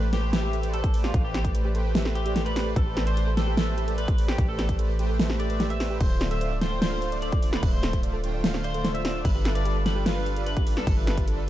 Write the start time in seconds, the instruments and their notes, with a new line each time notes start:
Already playing: 808-style bass A1
0.03 synth arpeggio sound B4
0.13 supersaw synth A3 G4 B4 C5 G5, synth arpeggio sound G4, clean electric guitar G4, snare, closed hi-hat
0.23 synth arpeggio sound A4
0.33 supersaw synth A3 G4 B4 C5 E5, clean electric guitar G4, synth arpeggio sound B4, snare, closed hi-hat
0.43 supersaw synth A3 G4 B4 C5 E5, synth arpeggio sound G4
0.53 synth arpeggio sound A4, closed hi-hat
0.63 supersaw synth A3 G4 B4 C5 D5, synth arpeggio sound B4, closed hi-hat
0.74 supersaw synth A3 G4 B4 C5 D5, synth arpeggio sound G4, clean electric guitar A4, closed hi-hat
0.84 synth arpeggio sound A4, kick, closed hi-hat
0.94 supersaw synth A3 G4 B4 C5 D5, synth arpeggio sound B4, open hi-hat
1.04 clean electric guitar F4, synth arpeggio sound G4, snare
1.14 808-style bass A1, supersaw synth A3 G4 B4 C5 D5, synth arpeggio sound A4, kick, closed hi-hat
1.24 clean electric guitar G4, synth arpeggio sound B4
1.34 synth arpeggio sound G4, snare, closed hi-hat
1.45 supersaw synth A3 G4 B4 C5 D5, synth arpeggio sound A4, kick, closed hi-hat
1.55 supersaw synth A3 G4 B4 C5 D5, synth arpeggio sound B4, closed hi-hat
1.65 synth arpeggio sound G4
1.75 supersaw synth A3 G4 B4 C5 G5, synth arpeggio sound A4, closed hi-hat
1.85 synth arpeggio sound B4
1.95 supersaw synth A3 G4 B4 C5 E5, synth arpeggio sound G4, snare, closed hi-hat
2.05 supersaw synth A3 G4 B4 C5 E5, synth arpeggio sound A4, snare
2.15 clean electric guitar G4, synth arpeggio sound B4, closed hi-hat
2.26 supersaw synth A3 G4 B4 C5 D5, synth arpeggio sound G4, closed hi-hat
2.36 supersaw synth A3 G4 B4 C5 D5, synth arpeggio sound A4, snare, closed hi-hat
2.46 clean electric guitar B4, synth arpeggio sound B4, closed hi-hat
2.56 supersaw synth A3 G4 B4 C5 D5, synth arpeggio sound G4, snare, open hi-hat
2.66 synth arpeggio sound A4
2.76 808-style bass A1, supersaw synth A3 G4 B4 C5 D5, clean electric guitar A4, synth arpeggio sound B4, kick, closed hi-hat
2.87 synth arpeggio sound G4
2.97 synth arpeggio sound A4, snare, closed hi-hat
3.07 supersaw synth A3 G4 B4 C5 D5, synth arpeggio sound B4, clean electric guitar C5, closed hi-hat
3.17 supersaw synth A3 G4 B4 C5 D5, synth arpeggio sound G4, closed hi-hat
3.27 synth arpeggio sound A4
3.37 supersaw synth A3 G4 B4 C5 G5, clean electric guitar A4, synth arpeggio sound B4, snare, closed hi-hat
3.47 synth arpeggio sound G4
3.57 supersaw synth A3 G4 B4 C5 E5, synth arpeggio sound A4, clean electric guitar A4, snare, closed hi-hat
3.67 supersaw synth A3 G4 B4 C5 E5, synth arpeggio sound B4
3.77 synth arpeggio sound G4, closed hi-hat
3.88 supersaw synth A3 G4 B4 C5 D5, synth arpeggio sound A4, closed hi-hat
3.98 supersaw synth A3 G4 B4 C5 D5, synth arpeggio sound B4, clean electric guitar B4, closed hi-hat
4.08 synth arpeggio sound G4, kick, closed hi-hat
4.18 supersaw synth A3 G4 B4 C5 D5, synth arpeggio sound A4, open hi-hat
4.28 clean electric guitar G4, synth arpeggio sound B4, snare
4.38 808-style bass A1, supersaw synth A3 G4 B4 C5 D5, synth arpeggio sound G4, kick, closed hi-hat
4.49 synth arpeggio sound A4, clean electric guitar A4
4.59 synth arpeggio sound B4, snare, closed hi-hat
4.69 supersaw synth A3 G4 B4 C5 D5, synth arpeggio sound G4, kick, closed hi-hat
4.79 supersaw synth A3 G4 B4 C5 D5, synth arpeggio sound A4, closed hi-hat
4.89 synth arpeggio sound B4
4.99 supersaw synth A3 G4 B4 C5 G5, synth arpeggio sound G4, closed hi-hat
5.09 synth arpeggio sound A4
5.20 supersaw synth A3 G4 B4 C5 E5, synth arpeggio sound B4, snare, closed hi-hat
5.30 supersaw synth A3 G4 B4 C5 E5, synth arpeggio sound G4, snare
5.40 synth arpeggio sound A4, clean electric guitar D5, closed hi-hat
5.50 supersaw synth A3 G4 B4 C5 E5, synth arpeggio sound B4, closed hi-hat
5.60 supersaw synth A3 G4 B4 C5 E5, synth arpeggio sound G4, snare, closed hi-hat
5.70 synth arpeggio sound A4, clean electric guitar E5, closed hi-hat
5.80 supersaw synth A3 G4 B4 C5 D5, synth arpeggio sound B4, snare, open hi-hat
5.90 supersaw synth A3 G4 B4 C5 G5, synth arpeggio sound G4
6.01 808-style bass D1, supersaw synth D3 A3 F4 C5 E5, synth arpeggio sound A4, clean electric guitar C5, kick, closed hi-hat, crash
6.11 synth arpeggio sound C5
6.21 synth arpeggio sound D5, snare, closed hi-hat
6.31 supersaw synth D3 A3 F4 C5 E5, synth arpeggio sound A4, clean electric guitar E5, closed hi-hat
6.41 supersaw synth D3 A3 F4 C5 D5, synth arpeggio sound C5, closed hi-hat
6.51 synth arpeggio sound D5
6.61 supersaw synth D3 A3 F4 C5 G5, synth arpeggio sound A4, clean electric guitar C5, snare, closed hi-hat
6.72 synth arpeggio sound C5
6.82 supersaw synth D3 A3 F4 C5 F5, clean electric guitar C5, synth arpeggio sound D5, snare, closed hi-hat, crash
6.92 supersaw synth D3 A3 F4 C5 F5, synth arpeggio sound A4
7.02 synth arpeggio sound C5, closed hi-hat
7.12 supersaw synth D3 A3 F4 C5 D5, synth arpeggio sound D5, closed hi-hat
7.22 supersaw synth D3 A3 F4 C5 E5, synth arpeggio sound A4, clean electric guitar D5, closed hi-hat
7.32 kick, closed hi-hat
7.42 supersaw synth D3 A3 F4 C5 D5, synth arpeggio sound D5, open hi-hat
7.53 synth arpeggio sound A4, clean electric guitar B4, snare
7.63 808-style bass D1, supersaw synth D3 A3 F4 C5 E5, synth arpeggio sound C5, kick, closed hi-hat, crash
7.73 clean electric guitar C5, synth arpeggio sound D5
7.83 synth arpeggio sound A4, snare, closed hi-hat
7.93 supersaw synth D3 A3 F4 C5 E5, synth arpeggio sound C5, kick, closed hi-hat
8.03 supersaw synth D3 A3 F4 C5 D5, synth arpeggio sound D5, closed hi-hat
8.13 synth arpeggio sound A4
8.24 supersaw synth D3 A3 F4 C5 G5, synth arpeggio sound C5, closed hi-hat
8.34 synth arpeggio sound D5
8.44 supersaw synth D3 A3 F4 C5 F5, synth arpeggio sound A4, snare, closed hi-hat, crash
8.54 supersaw synth D3 A3 F4 C5 F5, synth arpeggio sound C5, snare
8.64 clean electric guitar C5, synth arpeggio sound D5, closed hi-hat
8.74 supersaw synth D3 A3 F4 C5 D5, synth arpeggio sound A4, closed hi-hat
8.84 supersaw synth D3 A3 F4 C5 E5, synth arpeggio sound C5, snare, closed hi-hat
8.95 synth arpeggio sound D5, clean electric guitar E5, closed hi-hat
9.05 supersaw synth D3 A3 F4 C5 D5, synth arpeggio sound A4, snare, open hi-hat
9.15 synth arpeggio sound C5
9.25 808-style bass G1, supersaw synth G3 D4 F4 A4 B4 E5, clean electric guitar B4, kick, closed hi-hat, crash
9.35 synth arpeggio sound G4
9.45 synth arpeggio sound A4, snare, closed hi-hat
9.55 supersaw synth G3 D4 F4 A4 B4 E5, synth arpeggio sound B4, clean electric guitar D5, closed hi-hat
9.65 supersaw synth G3 D4 F4 A4 B4 D5, synth arpeggio sound G4, closed hi-hat
9.76 synth arpeggio sound A4
9.86 supersaw synth G3 D4 F4 A4 B4 G5, clean electric guitar B4, synth arpeggio sound B4, snare, closed hi-hat
9.96 synth arpeggio sound G4
10.06 supersaw synth G3 D4 F4 A4 B4 F5, synth arpeggio sound A4, clean electric guitar B4, snare, closed hi-hat, crash
10.16 supersaw synth G3 D4 F4 A4 B4 F5, synth arpeggio sound B4
10.26 synth arpeggio sound G4, closed hi-hat
10.36 supersaw synth G3 D4 F4 A4 B4 D5, synth arpeggio sound A4, closed hi-hat
10.46 supersaw synth G3 D4 F4 A4 B4 E5, clean electric guitar B4, synth arpeggio sound B4, closed hi-hat
10.57 synth arpeggio sound G4, kick, closed hi-hat
10.67 supersaw synth G3 D4 F4 A4 B4 D5, synth arpeggio sound A4, open hi-hat
10.77 clean electric guitar A4, synth arpeggio sound B4, snare
10.87 808-style bass G1, supersaw synth G3 D4 F4 A4 B4 E5, synth arpeggio sound G4, kick, closed hi-hat, crash
10.97 synth arpeggio sound A4, clean electric guitar B4
11.07 synth arpeggio sound B4, snare, closed hi-hat
11.17 supersaw synth G3 D4 F4 A4 B4 E5, synth arpeggio sound G4, kick, closed hi-hat
11.28 supersaw synth G3 D4 F4 A4 B4 D5, synth arpeggio sound A4, closed hi-hat
11.38 synth arpeggio sound B4